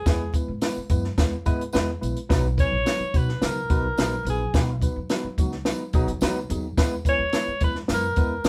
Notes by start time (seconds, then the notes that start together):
Already playing: G#4
0.06 E2 G#3 B3 E4 B4, kick, snare, closed hi-hat, tambourine
0.34 G#3 B3 E4 B4, kick, closed hi-hat, tambourine
0.48 G#2
0.61 G#3 B3 E4 B4, snare, closed hi-hat, tambourine
0.77 muted upright bass stroke
0.89 F#2 G#3 B3 E4 B4, kick, closed hi-hat, tambourine
1.04 snare
1.18 E2 G#3 B3 E4 B4, kick, snare, closed hi-hat, tambourine
1.46 G#2 G#3 B3 E4 B4, kick, closed hi-hat, tambourine
1.61 closed hi-hat
1.73 E2 G#3 B3 E4 B4, snare, closed hi-hat, tambourine
2.01 A#1 G#3 B3 E4 B4, closed hi-hat, tambourine
2.16 closed hi-hat
2.29 B1 F#3 B3 D#4 B4, kick, snare, closed hi-hat, tambourine
2.57 F#3 B3 D#4 B4 C#5, kick, closed hi-hat, tambourine
2.72 A#1
2.86 F#3 B3 D#4 B4, snare, closed hi-hat, tambourine
2.99 muted upright bass stroke
3.14 B1 F#3 B3 D#4 F#4 B4, kick, closed hi-hat, tambourine
3.29 snare
3.41 C#2 F#3 B3 D#4 A#4 B4, snare, closed hi-hat, tambourine
3.70 B1 F#3 B3 D#4 B4, kick, closed hi-hat, tambourine
3.97 A#1 F#3 B3 D#4 B4, snare, closed hi-hat, tambourine
4.25 A#1 F#3 B3 D#4 B4, closed hi-hat, tambourine
4.29 G#4
4.54 B1 F#3 B3 D#4 B4, kick, snare, closed hi-hat, tambourine
4.82 F#3 B3 D#4 B4, kick, closed hi-hat, tambourine
4.96 D#2
5.09 F#3 B3 D#4 B4, snare, closed hi-hat, tambourine
5.23 muted upright bass stroke
5.38 C#2 F#3 B3 D#4 F#4, kick, closed hi-hat, tambourine
5.52 snare
5.65 F#3 B3 D#4 B4, snare, closed hi-hat, tambourine
5.93 B1 F#3 B3 D#4 G#4, kick, closed hi-hat, tambourine
6.07 D#2, closed hi-hat
6.21 D2 F#3 B3 D#4 B4, snare, closed hi-hat, tambourine
6.50 D#2 F#3 B3 D#4 G#4, closed hi-hat, tambourine
6.78 E2 G#3 B3 E4 B4, kick, snare, closed hi-hat, tambourine
7.05 G#3 B3 E4 B4 C#5, kick, closed hi-hat, tambourine
7.18 D#2
7.32 G#3 B3 E4 B4, snare, closed hi-hat, tambourine
7.47 muted upright bass stroke
7.60 E2 G#3 B3 E4 B4, kick, closed hi-hat, tambourine
7.75 snare
7.88 F#2 G#3 B3 E4 B4, snare, closed hi-hat, tambourine
7.93 A#4
8.16 E2 G#3 B3 E4 B4, kick, closed hi-hat, tambourine
8.44 D#2, snare, closed hi-hat, tambourine